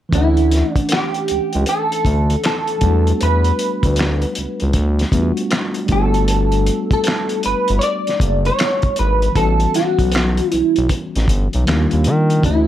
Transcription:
0.09 tine electric piano E3 A3, kick, closed hi-hat
0.13 analog synth bass D2, tine electric piano C#4 D4, clean electric guitar E4
0.18 tine electric piano F#5
0.37 closed hi-hat
0.51 snare, closed hi-hat
0.72 clean electric guitar D4, kick
0.76 closed hi-hat
0.89 clean electric guitar G4, closed hi-hat
0.93 snare, clap
1.14 closed hi-hat
1.28 analog synth bass C#2, closed hi-hat
1.53 analog synth bass C#2, closed hi-hat
1.66 clean electric guitar A4, closed hi-hat
1.92 closed hi-hat
2.05 analog synth bass D2, kick, closed hi-hat
2.30 closed hi-hat
2.44 clean electric guitar A4, snare, clap, closed hi-hat
2.67 closed hi-hat
2.79 analog synth bass E2, tine electric piano F#3 A3, kick, closed hi-hat
2.84 tine electric piano G3 B3 D4
2.88 tine electric piano F#4
3.07 closed hi-hat
3.21 analog synth bass E2, clean electric guitar B4, closed hi-hat
3.44 closed hi-hat
3.59 closed hi-hat
3.83 analog synth bass D2, kick, closed hi-hat
3.96 closed hi-hat
4.01 snare, clap
4.22 closed hi-hat
4.35 analog synth bass C#2, closed hi-hat
4.60 analog synth bass C#2, closed hi-hat
4.73 analog synth bass D2, kick, closed hi-hat
4.99 snare, closed hi-hat
5.11 analog synth bass E2, tine electric piano G3 A3 B3 D4, kick, closed hi-hat
5.15 tine electric piano F4
5.22 tine electric piano F#4
5.37 closed hi-hat
5.51 snare, clap, closed hi-hat
5.74 closed hi-hat
5.86 analog synth bass G1, tine electric piano G3 A3, kick, closed hi-hat
5.91 tine electric piano B3 D4, clean electric guitar A4
5.95 tine electric piano E4
6.02 tine electric piano F#4
6.14 closed hi-hat
6.28 closed hi-hat
6.52 closed hi-hat
6.67 closed hi-hat
6.91 clean electric guitar A4, kick, closed hi-hat
7.04 closed hi-hat
7.08 snare, clap
7.29 closed hi-hat
7.43 analog synth bass G1, clean electric guitar B4, closed hi-hat
7.68 analog synth bass G1, closed hi-hat
7.79 clean electric guitar C#5, closed hi-hat
7.83 clean electric guitar D5
8.07 snare, closed hi-hat
8.20 analog synth bass F#1, kick, closed hi-hat
8.45 clean electric guitar C#5, closed hi-hat
8.59 snare, clap, closed hi-hat
8.82 kick, closed hi-hat
8.96 analog synth bass G#1, clean electric guitar B4, closed hi-hat
9.22 closed hi-hat
9.32 tine electric piano E3 G3, kick, closed hi-hat
9.36 analog synth bass A1, tine electric piano B3 C#4, clean electric guitar A4
9.41 tine electric piano F#4
9.60 closed hi-hat
9.74 clean electric guitar F#4, snare, closed hi-hat
9.99 analog synth bass B1, kick, closed hi-hat
10.12 closed hi-hat
10.16 snare, clap
10.37 closed hi-hat
10.52 analog synth bass B1, clean electric guitar E4, closed hi-hat
10.76 analog synth bass B1, closed hi-hat
10.89 kick, closed hi-hat
11.15 analog synth bass A1, snare, closed hi-hat
11.28 analog synth bass G1, kick, closed hi-hat
11.53 analog synth bass B1, closed hi-hat
11.65 analog synth bass D#2, tine electric piano D#3 G3 A#3 D4, snare, closed hi-hat
11.69 tine electric piano D#4, clap
11.76 tine electric piano F4
11.91 analog synth bass D#2, closed hi-hat
12.04 analog synth bass D#3, closed hi-hat
12.30 closed hi-hat
12.40 tine electric piano D3 E3, kick
12.44 analog synth bass D2, tine electric piano A3 C#4, clean electric guitar E4, closed hi-hat
12.49 tine electric piano D#4
12.55 tine electric piano E4

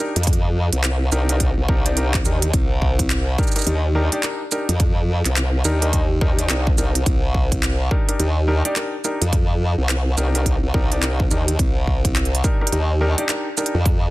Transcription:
0.00 grand piano D4 D#4 G4 A#4
0.16 wobble bass F2, closed hi-hat
0.23 kick, closed hi-hat
0.27 closed hi-hat
0.33 closed hi-hat
0.73 wobble bass C2, closed hi-hat
0.84 clap, closed hi-hat
1.12 wobble bass C2, grand piano D4 D#4 G4 A#4, shaker
1.29 grand piano D4 D#4 G4 A#4, cross-stick, closed hi-hat
1.40 kick, closed hi-hat
1.57 wobble bass C2
1.68 wobble bass C2, grand piano D4 D#4 G4 A#4, kick
1.86 grand piano D4 D#4 G4 D5, closed hi-hat
1.97 grand piano D4 D#4 G4 A#4, closed hi-hat
2.14 kick, clap
2.25 wobble bass D#2, grand piano D4 D#4 G4 A#4, shaker
2.42 closed hi-hat
2.53 wobble bass C2, kick, closed hi-hat
2.82 kick
2.99 kick, closed hi-hat
3.10 clap, closed hi-hat
3.38 grand piano D4 D#4 G4 A#4, kick, shaker
3.43 shaker
3.47 shaker
3.52 shaker
3.56 grand piano D4 D#4 G4 A#4, cross-stick, closed hi-hat, shaker
3.58 shaker
3.61 shaker
3.64 wobble bass D#2, closed hi-hat, shaker
3.95 grand piano D4 D#4 G4 A#4
4.12 grand piano D4 D#4 G4 D5, closed hi-hat
4.23 grand piano D4 D#4 G4 A#4, clap, closed hi-hat
4.52 grand piano D4 D#4 G4 A#4, shaker
4.69 wobble bass F2, closed hi-hat
4.80 kick, closed hi-hat
5.25 wobble bass C2, clap, closed hi-hat
5.36 clap, closed hi-hat
5.65 wobble bass D#2, grand piano D4 D#4 G4 A#4, shaker
5.82 grand piano D4 D#4 G4 A#4, cross-stick, closed hi-hat
5.93 kick, closed hi-hat
6.21 wobble bass D#2, grand piano D4 D#4 G4 A#4, kick
6.39 grand piano D4 D#4 G4 D5, closed hi-hat
6.50 wobble bass C2, grand piano D4 D#4 G4 A#4, clap, closed hi-hat
6.67 kick
6.78 wobble bass C2, grand piano D4 D#4 G4 A#4, shaker
6.95 closed hi-hat
7.06 wobble bass C2, kick, closed hi-hat
7.34 kick
7.52 kick, closed hi-hat
7.63 clap, closed hi-hat
7.91 grand piano D4 D#4 G4 A#4, kick
8.08 grand piano D4 D#4 G4 A#4, cross-stick, closed hi-hat
8.19 wobble bass D#2, closed hi-hat
8.48 grand piano D4 D#4 G4 A#4
8.65 grand piano D4 D#4 G4 D5, closed hi-hat
8.76 grand piano D4 D#4 G4 A#4, clap, closed hi-hat
9.04 grand piano D4 D#4 G4 A#4, shaker
9.21 wobble bass F2, closed hi-hat
9.33 kick, closed hi-hat
9.78 wobble bass C2
9.89 clap, closed hi-hat
10.17 wobble bass C2, grand piano D4 D#4 G4 A#4, shaker
10.35 grand piano D4 D#4 G4 A#4, cross-stick, closed hi-hat
10.46 kick, closed hi-hat
10.63 wobble bass C2
10.74 wobble bass C2, grand piano D4 D#4 G4 A#4, kick
10.92 grand piano D4 D#4 G4 D5, closed hi-hat
11.03 grand piano D4 D#4 G4 A#4, clap, closed hi-hat
11.20 kick
11.31 wobble bass D#2, grand piano D4 D#4 G4 A#4, shaker
11.48 closed hi-hat
11.59 wobble bass C2, kick, closed hi-hat
11.87 kick
12.05 kick, closed hi-hat
12.16 clap, closed hi-hat
12.25 closed hi-hat
12.35 closed hi-hat
12.44 grand piano D4 D#4 G4 A#4, kick, shaker
12.61 grand piano D4 D#4 G4 A#4, cross-stick
12.67 closed hi-hat
12.72 wobble bass D#2, closed hi-hat
13.01 grand piano D4 D#4 G4 A#4
13.18 grand piano D4 D#4 G4 D5, closed hi-hat
13.29 grand piano D4 D#4 G4 A#4, clap, closed hi-hat
13.57 grand piano D4 D#4 G4 A#4, shaker
13.66 closed hi-hat
13.74 wobble bass F2
13.86 kick, closed hi-hat

